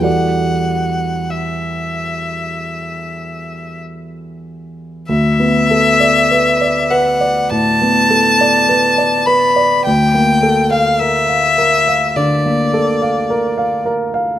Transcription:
<<
  \new Staff \with { instrumentName = "Violin" } { \time 4/4 \key e \minor \tempo 4 = 50 fis''4 e''2 r4 | e''4. fis''8 a''4. b''8 | g''8. f''16 e''4 d''4. r8 | }
  \new Staff \with { instrumentName = "Grand piano" } { \time 4/4 \key e \minor <e, g fis' a' d''>1 | d,16 b16 a'16 d''16 b'16 d''16 b'16 d''16 a,16 b16 a'16 d''16 b'16 d''16 b'16 d''16 | d,16 bes16 a'16 f''16 bes'16 f''16 bes'16 f''16 d16 bes16 a'16 f''16 bes'16 f''16 bes'16 f''16 | }
>>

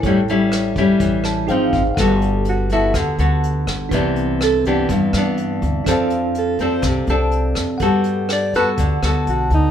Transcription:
<<
  \new Staff \with { instrumentName = "Tine electric piano" } { \time 4/4 \key g \major \tempo 4 = 124 << { r2 r8 a''8 g''8 f''8 | r1 | r1 | r1 |
r1 | } \\ { <e' a' cis'' g''>2. <ees' aes' c'' f''>4 | <g' a' b' fis''>1 | <c' d' b' e''>1 | <d' a' c'' f''>1 |
<g' a' b' fis''>1 | } >> }
  \new Staff \with { instrumentName = "Alto saxophone" } { \time 4/4 \key g \major r1 | r4 fis'8 e'8 r2 | r4 a'8 g'8 r2 | r4 a'8 c''8 r2 |
r4 d''8 b'8 r4 fis'8 ees'8 | }
  \new Staff \with { instrumentName = "Nylon-string guitar" } { \time 4/4 \key g \major << { <g cis' e'>8 <g cis' e'>4 <g cis' e'>4. <f c' ees'>8 r8 | <b fis' a'>4. <b fis' a'>4 <b fis' a'>4. | <e b d'>4 r8 <e b d'>4 <e b d'>4. | <c' d' a'>4. <c' d' a'>4 <c' d' a'>4. |
<b fis' a'>4 r8 <b fis' a'>4 <b fis' a'>4. | } \\ { a,2 e4 r4 | g2 d2 | c2 g,2 | f2 c2 |
g2 d2 | } >> }
  \new Staff \with { instrumentName = "Upright bass" } { \clef bass \time 4/4 \key g \major a,,2 a,,4 aes,,8 aes,,8 | g,,2 d,8 d,4 g,,8 | c,2 g,8 g,4 d,8 | f,2 c,8 c,4 f,8 |
g,2 d,8 d,8 b,,8 d,8 | }
  \new DrumStaff \with { instrumentName = "Drums" } \drummode { \time 4/4 <hh bd>8 hh8 <hh ss>8 <hh bd>8 <hh bd>8 <hh ss>8 hh8 <hh bd>8 | <hh bd ss>8 hh8 hh8 <hh bd>8 <hh bd ss>8 hh8 hh8 <hh bd ss>8 | <hh bd>8 hh8 <hh ss>8 <hh bd>8 <hh bd>8 <hh ss>8 hh8 <hh bd>8 | <hh bd ss>8 hh8 hh8 <hh bd>8 <hh bd ss>8 hh8 hh8 <hh bd ss>8 |
<hh bd>8 hh8 <hh ss>8 <hh bd>8 <hh bd>8 <hh ss>8 hh8 <hh bd>8 | }
>>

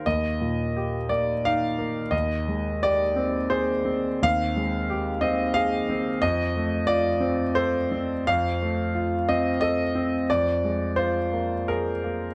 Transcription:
\new Staff \with { instrumentName = "Grand piano" } { \time 3/4 \key aes \lydian \tempo 4 = 88 << { ees''4. d''8 f''4 | ees''4 d''4 c''4 | f''4. ees''8 f''4 | ees''4 d''4 c''4 |
f''4. ees''8 ees''4 | d''4 c''4 bes'4 | } \\ { <ees, bes>8 bes,8 g'8 bes8 ees'8 bes8 | ees,8 aes8 g'8 c'8 aes'8 c'8 | ees,8 aes8 g'8 c'8 aes'8 c'8 | f,8 a8 f'8 c'8 a'8 c'8 |
f,8 a8 f'8 c'8 a'8 c'8 | f,8 aes8 f'8 bes8 aes'8 bes8 | } >> }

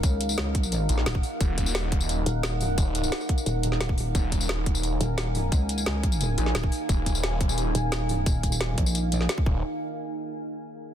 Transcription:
<<
  \new Staff \with { instrumentName = "Ambient pad" } { \time 4/4 \key ees \minor \tempo 4 = 175 << { ges''1~ | ges''1~ | ges''1 | aes''1~ |
aes''1~ | aes''1~ | aes''2.~ aes''8 r8 | r1 | } \\ { <ees' bes' f''>1~ | <ees' bes' f''>1~ | <ees' bes' f''>1~ | <ees' bes' f''>1~ |
<ees' bes' f''>1~ | <ees' bes' f''>1~ | <ees' bes' f''>2.~ <ees' bes' f''>8 r8 | r1 | } >> }
  \new Staff \with { instrumentName = "Detuned saw bass" } { \clef bass \time 4/4 \key ees \minor r2 r8 bes,,8 r4 | ees,,2~ ees,,8 r4. | ees,,4 r2. | ees,,2~ ees,,8 r4. |
r2 r8 bes,,8 r4 | ees,,2~ ees,,8 r4. | r2. r8 ees,,8 | r1 | }
  \new Staff \with { instrumentName = "Wobble bass" } { \clef bass \time 4/4 \key ees \minor des,2~ des,8 r8 ees,,8 r8 | r2 r8 ees,,4. | r2 ees,,2 | r2 r8 ees,,4. |
des,2~ des,8 r8 ees,,8 r8 | r2 r8 ees,,4. | ees,,4. bes,,4. r4 | r1 | }
  \new DrumStaff \with { instrumentName = "Drums" } \drummode { \time 4/4 <hh bd tamb>8 <hh tamb>16 tamb16 <hh sn>8 <hh bd>16 tamb16 <hh tamb>8 <hh tamb>16 sn16 <hh sn tamb>16 bd16 <hho tamb>8 | <hh bd tamb>8 <hh bd tamb>16 tamb16 <hh sn>8 <hh bd>16 tamb16 <hh tamb>8 <hh tamb>8 <hh sn tamb>8 <hho tamb>8 | <hh bd tamb>8 <hh tamb>16 tamb16 <hh sn>16 tamb16 <hh bd>16 tamb16 <hh tamb>8 <hh tamb>16 sn16 <hh sn tamb>16 bd16 <hho tamb>8 | <hh bd tamb>8 <hh bd tamb>16 tamb16 <hh sn>8 <hh bd>16 tamb16 <hh tamb>8 <hh tamb>8 <hh sn tamb>8 <hho tamb>8 |
<hh bd tamb>8 <hh tamb>16 tamb16 <hh sn>8 <hh bd>16 tamb16 <hh tamb>8 <hh tamb>16 sn16 <hh sn tamb>16 bd16 <hho tamb>8 | <hh bd tamb>8 <hh bd tamb>16 tamb16 <hh sn tamb>8 <hh bd>16 tamb16 <hh tamb>8 <hh tamb>8 <hh sn tamb>8 <hho tamb>8 | <hh bd tamb>8 <hh bd tamb>16 tamb16 <hh sn tamb>8 <hh bd>16 tamb16 <hh tamb>8 <hh tamb>16 sn16 <hh sn tamb>16 bd16 bd8 | r4 r4 r4 r4 | }
>>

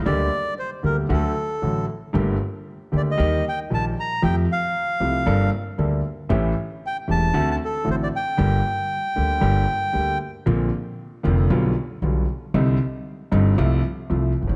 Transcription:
<<
  \new Staff \with { instrumentName = "Bandoneon" } { \time 4/4 \key g \minor \tempo 4 = 115 d''4 c''8 bes'8 a'4. r8 | r4. d''16 ees''8. g''8 a''8 bes''8 | g''8 f''2 r4. | r4 g''8 a''8. a''16 a'8 c''16 d''16 g''8~ |
g''2.~ g''8 r8 | \key bes \major r1 | r1 | }
  \new Staff \with { instrumentName = "Grand piano" } { \clef bass \time 4/4 \key g \minor <d, d g bes g'>8 r4 <d, d g bes g'>8 <d, d fis a fis'>8 r8 <a,, a, d fis a fis'>8 r8 | <g,, g, d a bes g'>8 r4 <d, d a bes g'>8 <ees, ees g bes g'>8 r8 <bes,, bes, ees g bes g'>8 r8 | <f, f a c' g'>8 r4 <c, c f a c' g'>8 <g,, g, g bes d' a'>8 r8 <d, d g bes d' a'>8 r8 | <a,, a, e a cis' g'>8 r4 <e,, e, e a cis' g'>8 <d, d a c' fis'>8 r8 <a,, a, d a c' fis'>8 r8 |
<g,, g, d g bes g'>8 r4 <d, d g bes g'>8 <g,, g, d g bes g'>8 r8 <d, d g bes g'>8 r8 | \key bes \major <bes,, bes, d bes c' f'>8 r4 <f,, f, d bes c' f'>8 <b,, b, d g b f'>8 r8 <b,, b, d g b f'>8 r8 | <c, c d g c' ees'>8 r4 <g,, g, d g c' ees'>8 <c, c f a f'>8 r8 <c, c f a f'>8 r32 g,,32 aes,,32 r32 | }
  \new Staff \with { instrumentName = "Upright bass" } { \clef bass \time 4/4 \key g \minor d,16. r4 r32 d,16. r32 d,16. r8 r32 a,,16. r8 r32 | g,,16. r4 r32 d,16. r32 ees,16. r8 r32 bes,,16. r8 r32 | f,16. r4 r32 c,16. r32 g,,16. r8 r32 d,16. r8 r32 | a,,16. r4 r32 e,,16. r32 d,16. r8 r32 a,,16. r8 r32 |
g,,16. r4 r32 d,16. r32 g,,16. r8 r32 d,16. r8 r32 | \key bes \major bes,,16. r4 r32 f,,16. r32 b,,16. r8 r32 b,,16. r8 r32 | c,16. r4 r32 g,,16. r32 c,16. r8 r32 c,16. r16 g,,32 aes,,32 r32 | }
>>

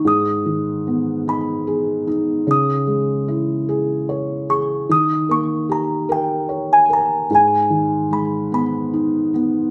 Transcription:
<<
  \new Staff \with { instrumentName = "Music box" } { \time 6/8 \key gis \minor \tempo 4. = 50 dis'''4. b''4. | dis'''2 r8 cis'''8 | dis'''8 cis'''8 ais''8 g''8. gis''16 ais''8 | gis''4 b''8 b''4. | }
  \new Staff \with { instrumentName = "Felt piano" } { \time 6/8 \key gis \minor gis,8 dis8 b8 dis'8 gis'8 dis'8 | cis8 gis8 e'8 gis'8 cis''8 gis'8 | dis8 ais8 g'8 ais'8 cis''8 ais'8 | gis,8 dis8 gis8 b8 dis'8 b8 | }
>>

